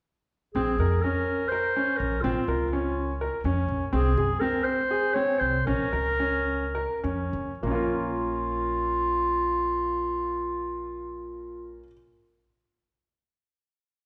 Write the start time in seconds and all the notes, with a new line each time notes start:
0.55 A#1 C4 G#4
0.78 F2 A#4
1.02 C#4 A#4
1.49 A#4 C5
1.76 C#4
1.97 A#1 A#4
2.22 A#1 C4 F4
2.48 C#2 A#4
2.73 C#4
3.21 A#4
3.44 F2 C#4
3.68 A#1
3.92 C2 C4 G#4
4.17 F#2 G#4
4.40 C4 A#4
4.64 C5
4.91 G#4
5.14 C4 C#5
5.39 C2 C5
5.66 A#1 C#4 A#4
5.93 C#2 A#4
6.20 C#4
6.75 A#4
7.04 F2 C#4
7.33 C#2
7.63 A#1 A#3 C#4 F4
7.71 F4 A#4